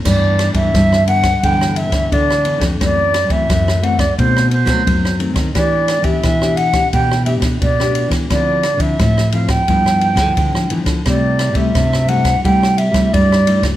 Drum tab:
CC |x---------------|----------------|----------------|----------------|
RD |--xxx-xxx-xxx-xx|x-xxx-xxx-xxx-xx|x-xxx-xxx-xxx-xx|x-xxx-xxx-xxx-xx|
SD |r-r-rr-r-r-r-r-r|r-r-rr-r-r-r-r-r|r-r-rr-r-r-r-r-r|r-r-rr-r-r-r-r-r|
BD |o--oo--oo--oo--o|o--oo--oo--oo--o|o--oo--oo--oo--o|o--oo--oo--oo--o|

CC |----------------|
RD |x-xxx-xxx-xxx-xx|
SD |r-r-rr-r-r-r-r-r|
BD |o--oo--oo--oo--o|